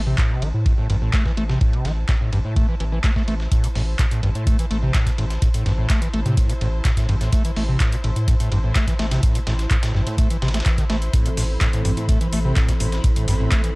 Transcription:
Already playing: A1 E4 C5 A5
0.07 C3
0.18 A2, kick, snare, clap, ride
0.30 C3
0.42 A1 E3, ride
0.54 A2
0.66 A2, kick, ride
0.78 A2
0.90 A1 G2, ride
1.02 A2
1.13 A3, kick, snare, clap, ride
1.26 E3, kick, snare
1.37 A1 A3, ride
1.49 C3, snare
1.61 A2, kick, ride
1.73 C3, ride
1.85 A1 E3, snare, ride
2.09 A2, kick, snare, clap, ride
2.21 A2
2.33 A1 G2, ride
2.45 A2
2.56 A3, kick, ride
2.69 E3
2.80 A1 E3, ride
2.92 E3
3.04 A3, kick, snare, clap, ride
3.16 A3, kick, snare
3.28 A1 A3, ride
3.40 snare
3.52 A2, kick, closed hi-hat, ride
3.64 C3, closed hi-hat
3.75 A1 A2, snare, open hi-hat
3.99 A2, kick, snare, clap, closed hi-hat, ride
4.11 A2, closed hi-hat
4.23 A1 G2, ride
4.35 A2, closed hi-hat
4.47 A3, kick, closed hi-hat, ride
4.59 E3, closed hi-hat
4.71 A1 A3, ride
4.83 C3
4.94 A2, kick, snare, clap, closed hi-hat, ride
5.07 C3, kick, snare, closed hi-hat
5.18 A1 A2, ride
5.30 snare, closed hi-hat
5.42 A2, kick, closed hi-hat, ride
5.54 A2, closed hi-hat, ride
5.66 A1 G2, snare, ride
5.78 A2
5.90 A3, kick, snare, clap, closed hi-hat, ride
6.02 E3, closed hi-hat
6.13 A1 A3, ride
6.26 A2 C3, closed hi-hat
6.37 A2, kick, closed hi-hat, ride
6.49 C3, closed hi-hat
6.61 A1 A2, ride
6.85 A2, kick, snare, clap, closed hi-hat, ride
6.97 A2, kick, snare, closed hi-hat
7.09 A1 G2, ride
7.21 A2, snare, closed hi-hat
7.33 A3, kick, closed hi-hat, ride
7.45 E3, closed hi-hat
7.56 A1 A3, snare, open hi-hat
7.69 C3
7.80 A2, kick, snare, clap, closed hi-hat, ride
7.92 C3, closed hi-hat
8.04 A1 A2, ride
8.16 A2, closed hi-hat
8.28 A2, kick, closed hi-hat, ride
8.40 A2, closed hi-hat
8.52 A1 G2, ride
8.64 A2
8.75 A3, kick, snare, clap, closed hi-hat, ride
8.88 E3, kick, snare, closed hi-hat
8.99 A1 A3, snare, ride
9.11 C3, snare, closed hi-hat, ride
9.23 A2, kick, closed hi-hat, ride
9.35 C3, closed hi-hat, ride
9.47 A1 A2, snare, ride
9.59 snare, closed hi-hat
9.71 A2, kick, clap, closed hi-hat, ride
9.83 A2, snare, closed hi-hat, ride
9.95 A1 G2, snare
10.07 A2, closed hi-hat, ride
10.18 A3, kick, closed hi-hat, ride
10.30 E3, closed hi-hat
10.42 A1 C3, snare, ride
10.48 snare, ride
10.54 A3, snare, closed hi-hat, ride
10.60 snare, ride
10.66 E3, kick, snare, clap, closed hi-hat, ride
10.75 D3 B5, kick, snare, closed hi-hat
10.90 A1 A3, snare, ride
11.02 closed hi-hat
11.13 A2 E3 C4 A4, kick, closed hi-hat, ride
11.26 C3, closed hi-hat
11.37 A1 A2, snare, open hi-hat
11.61 A2, kick, snare, clap, closed hi-hat, ride
11.73 A2, closed hi-hat
11.85 A1 G2, open hi-hat, ride
11.97 A2, closed hi-hat
12.09 A3, kick, closed hi-hat, ride
12.21 E3, closed hi-hat
12.33 A1 A3, open hi-hat, ride
12.45 C3
12.56 A2, kick, snare, clap, closed hi-hat, ride
12.69 C3, kick, snare, closed hi-hat
12.80 A1 A2, open hi-hat, ride
12.92 snare, closed hi-hat
13.04 A2, kick, closed hi-hat, ride
13.16 A2, closed hi-hat, ride
13.28 A1 G2, snare, open hi-hat, ride
13.40 A2
13.52 A3, kick, snare, clap, closed hi-hat, ride
13.64 E3, closed hi-hat

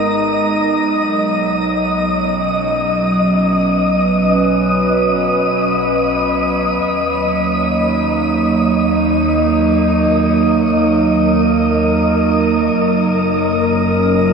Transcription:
Already playing: G#1 G#3 B3 D#4 A#4 D#5 D#6
0.86 B1 F#3
1.96 C#4
3.36 B4
6.84 D#2
7.09 A#3
7.45 D#4
9.56 A#4
12.80 F#1
13.53 C#4
13.88 F4

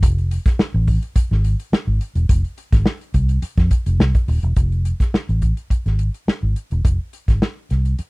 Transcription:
0.03 F1, kick, closed hi-hat
0.18 closed hi-hat
0.31 closed hi-hat
0.46 kick, snare, closed hi-hat
0.59 muted fingered electric bass stroke, snare
0.74 A1
0.87 kick, open hi-hat
1.03 closed hi-hat
1.16 muted fingered electric bass stroke, kick, closed hi-hat
1.31 G#1, snare
1.44 closed hi-hat
1.60 closed hi-hat
1.72 muted fingered electric bass stroke, snare
1.87 G#1
2.01 closed hi-hat
2.15 E1, closed hi-hat
2.29 F1, kick, closed hi-hat
2.45 closed hi-hat
2.58 closed hi-hat
2.72 G#1, kick, snare, closed hi-hat
2.86 snare
3.01 closed hi-hat
3.14 C2, kick, closed hi-hat
3.29 closed hi-hat
3.42 muted fingered electric bass stroke, closed hi-hat
3.58 F2, kick, snare, closed hi-hat
3.71 kick, closed hi-hat
3.86 F1, closed hi-hat
3.99 C2, snare
4.15 kick, closed hi-hat
4.28 D#1, open hi-hat
4.43 E1, closed hi-hat
4.56 F1, kick, closed hi-hat
4.72 closed hi-hat
4.85 closed hi-hat
5.00 kick, snare, closed hi-hat
5.14 muted fingered electric bass stroke, snare
5.29 A1, closed hi-hat
5.42 kick, closed hi-hat
5.57 closed hi-hat
5.70 muted fingered electric bass stroke, kick, closed hi-hat
5.86 G#1, snare, closed hi-hat
5.99 closed hi-hat
6.14 closed hi-hat
6.28 muted fingered electric bass stroke, snare
6.43 G#1
6.56 closed hi-hat
6.71 E1, closed hi-hat
6.85 F1, kick, closed hi-hat
7.13 closed hi-hat
7.28 G#1, kick, snare, closed hi-hat
7.42 snare
7.70 C2, snare, closed hi-hat
7.85 closed hi-hat
7.99 muted fingered electric bass stroke, closed hi-hat

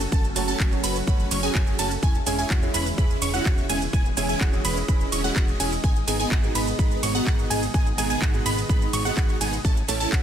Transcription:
Already playing: C#3 F#3 A3 F#4
0.00 shaker
0.12 F#1 C#4 F#4 A4 A5, kick, shaker
0.24 shaker
0.35 F#1 F#3 A3 C#4 F#4 A4 A5, open hi-hat, ride, shaker
0.48 C#4 F#4 A4 A5, shaker
0.60 F#1 C#4 F#4 G#4 G#5, kick, clap, shaker
0.71 F#3 A3 C#4 F#4, shaker
0.84 F#1 C#4 F#4 B4 B5, open hi-hat, ride, shaker
0.96 shaker
1.07 F#1 F#3 A3 C#4 F#4 B4 B5, kick, shaker
1.20 shaker
1.31 F#1 C#4 F#4 C#5 C#6, open hi-hat, ride, shaker
1.43 F#3 A3 C#4 F#4 G#4 G#5, shaker
1.55 F#1 C#4 F#4 G#4 G#5, kick, clap, shaker
1.67 shaker
1.79 F#1 F#3 A3 C#4 F#4 A4 A5, open hi-hat, ride, shaker
1.91 shaker
2.03 E1 E3 G#3 C#4 E4 G#4 G#5, kick, shaker
2.15 shaker
2.26 E1 G#3 C#4 E4 G#4 G#5, open hi-hat, ride, shaker
2.38 C#4 E4 G#4 G#5, shaker
2.50 E1 C#4 E4 F#4 F#5, kick, clap, shaker
2.62 G#3 C#4 E4 G#4, shaker
2.74 E1 C#4 E4 B4 B5, open hi-hat, ride, shaker
2.86 shaker
2.98 E1 G#3 C#4 E4 G#4 B4 B5, kick, shaker
3.10 shaker
3.22 E1 C#4 E4 C#5 C#6, open hi-hat, ride, shaker
3.33 G#3 C#4 E4 F#4 G#4 F#5, shaker
3.46 E1 C#4 E4 F#4 F#5, kick, clap, shaker
3.58 shaker
3.69 E1 G#3 C#4 E4 G#4 G#5, open hi-hat, ride, shaker
3.82 shaker
3.93 E1 C#4 E4 G#4 D#5 G#5, kick, shaker
4.05 shaker
4.17 E1 G#3 C#4 E4 G#4 G#5, open hi-hat, ride, shaker
4.29 C#4 E4 G#4 G#5, shaker
4.41 E1 C#4 E4 F#4 F#5, kick, clap, shaker
4.52 G#3 C#4 E4 G#4, shaker
4.65 E1 C#4 E4 B4 B5, open hi-hat, ride, shaker
4.77 shaker
4.88 E1 G#3 C#4 E4 G#4 B4 B5, kick, shaker
5.01 shaker
5.12 E1 C#4 E4 C#5 C#6, open hi-hat, ride, shaker
5.24 G#3 C#4 E4 F#4 G#4 F#5, shaker
5.36 E1 C#4 E4 F#4 F#5, kick, clap, shaker
5.48 shaker
5.60 E1 G#3 C#4 E4 G#4 G#5, open hi-hat, ride, shaker
5.72 shaker
5.84 G#1 B2 D#3 B3 D#4 G#4 G#5, kick, shaker
5.96 shaker
6.07 G#1 G#3 B3 D#4 G#4 G#5, open hi-hat, ride, shaker
6.20 B3 D#4 G#4 G#5, shaker
6.31 G#1 B3 D#4 F#4 F#5, kick, clap, shaker
6.43 G#3 B3 D#4 G#4, shaker
6.55 G#1 B3 D#4 B4 B5, open hi-hat, ride, shaker
6.67 shaker
6.78 G#1 G#3 B3 D#4 G#4 B4 B5, kick, shaker
6.91 shaker
7.03 G#1 B3 D#4 C#5 C#6, open hi-hat, ride, shaker
7.14 G#3 B3 D#4 F#4 G#4 F#5, shaker
7.26 G#1 B3 D#4 F#4 F#5, kick, clap, shaker
7.39 shaker
7.50 G#1 G#3 B3 D#4 G#4 G#5, open hi-hat, ride, shaker
7.63 shaker
7.74 G#1 B3 D#4 G#4 G#5, kick, shaker
7.87 shaker
7.97 G#1 G#3 B3 D#4 G#4 G#5, open hi-hat, ride, shaker
8.10 B3 D#4 G#4 G#5, shaker
8.22 G#1 B3 D#4 F#4 F#5, kick, clap, shaker
8.33 G#3 B3 D#4 G#4, shaker
8.46 G#1 B3 D#4 B4 B5, open hi-hat, ride, shaker
8.58 shaker
8.69 G#1 G#3 B3 D#4 G#4 B4 B5, kick, shaker
8.82 shaker
8.93 G#1 B3 D#4 C#5 C#6, open hi-hat, ride, shaker
9.05 G#3 B3 D#4 F#4 G#4 F#5, shaker
9.17 G#1 B3 D#4 F#4 F#5, kick, clap, shaker
9.29 shaker
9.40 G#1 G#3 B3 D#4 G#4 G#5, open hi-hat, ride, shaker
9.53 shaker
9.64 A1 C#3 E3 A3 C#4 E4 A4 A5, kick, shaker
9.77 shaker
9.88 A1 A3 C#4 E4 A4 A5, open hi-hat, ride, shaker
10.00 C#4 E4 A4 A5, shaker
10.12 A1 C#4 E4 F#4 F#5, kick, clap, shaker

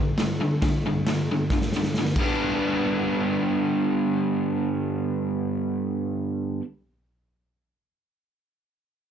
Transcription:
Already playing: G2 D3
0.18 G2 D3, snare, open hi-hat
0.41 G2 D3
0.62 G2 D3, kick, snare, open hi-hat
0.86 G2 D3
1.07 G2 D3, snare, open hi-hat
1.31 G2 D3
1.50 G2 D3, kick, snare
1.62 snare
1.72 D3, snare
1.77 G2
1.83 snare
1.94 G2, snare
1.98 D3
2.05 snare
2.16 G2 D3, kick, crash
2.20 G3 B3 D4

